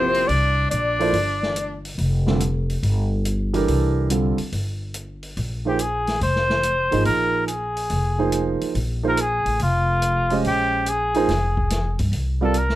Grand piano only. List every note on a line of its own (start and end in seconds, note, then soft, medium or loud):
0.00 0.26 C3 medium
0.00 0.26 F3 medium
0.00 0.26 A#3 medium
0.00 0.27 E4 medium
0.00 0.27 G4 medium
0.99 1.12 F3 medium
0.99 1.12 A#3 medium
0.99 1.13 E4 medium
0.99 1.13 A4 medium
0.99 1.13 C5 medium
2.26 2.39 D3 medium
2.26 2.39 G3 medium
2.26 2.40 C4 soft
2.26 2.40 F4 medium
2.26 2.40 A4 medium
3.54 4.07 E3 medium
3.54 4.07 D4 medium
3.54 4.08 G4 medium
3.54 4.07 A4 medium
3.54 4.08 A#4 medium
4.09 4.35 D3 medium
4.09 4.36 G3 medium
4.09 4.36 C4 soft
4.09 4.36 F4 soft
4.09 4.36 A4 medium
5.65 5.78 F3 medium
5.65 5.78 A#3 medium
5.65 5.78 D#4 medium
5.65 5.78 G#4 medium
5.65 5.79 C5 medium
6.91 7.45 F3 medium
6.91 7.45 A#3 medium
6.91 7.46 D#4 medium
6.91 7.46 G#4 medium
6.91 7.46 D#5 medium
8.18 8.72 F3 medium
8.18 8.72 A#3 medium
8.18 8.73 D#4 medium
8.18 8.73 G#4 medium
8.18 8.73 C5 medium
9.03 9.16 F3 medium
9.03 9.16 A#3 medium
9.03 9.16 D#4 medium
9.03 9.16 G#4 medium
9.03 9.17 C5 medium
10.31 10.84 G#3 medium
10.31 10.84 C#4 medium
10.31 10.84 G4 medium
10.31 10.85 C5 medium
10.31 10.85 D#5 medium
11.15 11.27 F3 medium
11.15 11.28 A#3 medium
11.15 11.28 D#4 medium
11.15 11.28 G#4 medium
11.15 11.29 C5 medium
12.41 12.54 G3 medium
12.41 12.54 C4 medium
12.41 12.54 F4 medium
12.41 12.55 A#4 medium
12.41 12.55 D5 medium